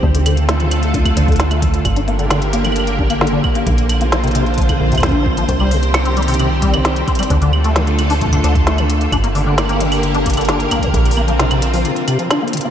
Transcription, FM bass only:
X:1
M:4/4
L:1/8
Q:1/4=132
K:Dphr
V:1 name="FM bass" clef=bass
D,,4- D,, D,,3 | G,,,6- G,,, z | B,,,4- B,,, B,,,3 | C,,6- C,, z |
D,,4- D,, D,,3 | G,,,6- G,,, z | B,,,4 z4 |]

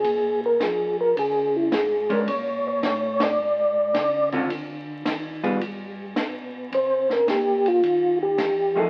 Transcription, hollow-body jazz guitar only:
X:1
M:4/4
L:1/8
Q:"Swing" 1/4=108
K:Cm
V:1 name="Hollow-body jazz guitar"
z6 z [A,^CD] | z6 z [D,CF=A] | z3 [G,_CFA] z4 | z6 z [F,=A,E_A] |]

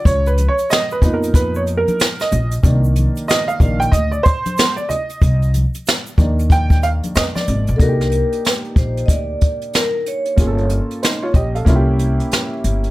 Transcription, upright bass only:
X:1
M:4/4
L:1/16
Q:"Swing 16ths" 1/4=93
K:Cm
V:1 name="Upright bass" clef=bass
_D,,3 z3 F,,4- F,, z3 B,,,2 | C,,3 z3 B,,,2 D,,2 z6 | C,,3 z3 E,,4- E,, z F,, z A,,, B,,, | C,,3 z3 B,,,2 D,,2 z6 |
G,,,3 z3 B,,,2 C,,4 z2 G,,,2 |]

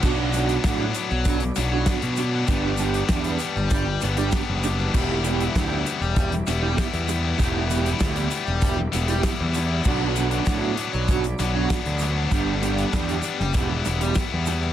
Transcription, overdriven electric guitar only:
X:1
M:4/4
L:1/16
Q:1/4=98
K:Em
V:1 name="Overdriven electric guitar"
[F,B,DF] z [F,B,DF] z [F,B,DF] z3 [F,B,DF] z2 [F,B,DF] z4 | [G,B,DG] z [G,B,DG] z [G,B,DG] z3 [G,B,DG] z2 [G,B,DG] z4 | [E,B,EG] z [E,B,EG] z [E,B,EG] z3 [E,B,EG] z2 [E,B,EG] z4 | [E,B,EG] z [E,B,EG] z [E,B,EG] z3 [E,B,EG] z2 [E,B,EG] z4 |
[F,B,DF] z [F,B,DF] z [F,B,DF] z3 [F,B,DF] z2 [F,B,DF] z4 | [G,B,DG] z [G,B,DG] z [G,B,DG] z3 [E,B,EG] z2 [E,B,EG] z4 |]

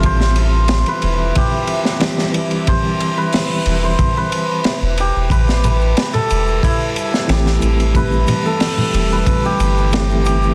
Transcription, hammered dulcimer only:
X:1
M:4/4
L:1/16
Q:1/4=91
K:Am
V:1 name="Hammered dulcimer"
c2 c3 B3 G3 z4 z | c3 B4 c2 B3 z2 G2 | B2 B3 A3 E3 z4 z | B3 A4 B2 G3 z2 G2 |]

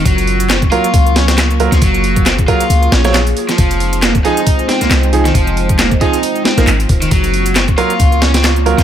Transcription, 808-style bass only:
X:1
M:4/4
L:1/16
Q:"Swing 16ths" 1/4=136
K:Gblyd
V:1 name="808-style bass" clef=bass
G,,,6 z2 D,,6- D,, D,, | G,,,6 z2 D,,2 B,,,4 z2 | F,,,6 z4 z C,, C,,4 | F,,,6 z4 z B,,, A,,,2 E,,,2 |
G,,,6 z2 D,,6- D,, D,, |]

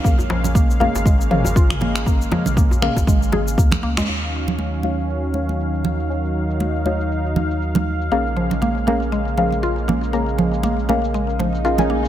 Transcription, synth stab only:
X:1
M:4/4
L:1/16
Q:"Swing 16ths" 1/4=119
K:Bbm
V:1 name="Synth stab"
[DABf]6 [DABf] z3 [DABf]6 | [DABb]6 [DABf]8- [DABf]2 | [EGdf]6 [EGdf] z3 [EGdf]6 | [EGda]6 [EGdf]8- [EGdf]2 |
[DABf]6 [DABf] z3 [DABf]6 | [DABb]6 [DABf]6 [DABf] [DABa]3 |]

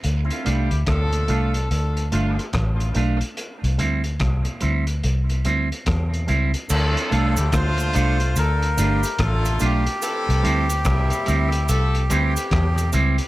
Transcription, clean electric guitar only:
X:1
M:4/4
L:1/8
Q:"Swing 16ths" 1/4=72
K:Dm
V:1 name="Clean electric guitar"
z [A,DF] z [A,DF] z [A,DF] z [A,DF] | z [G,CE] z [G,CE] z [G,CE] z [G,CE] | z [A,DF] z [A,DF] z [A,DF] z [A,DF] | z [G,CE] z [G,CE] z [G,CE] z [G,CE] |]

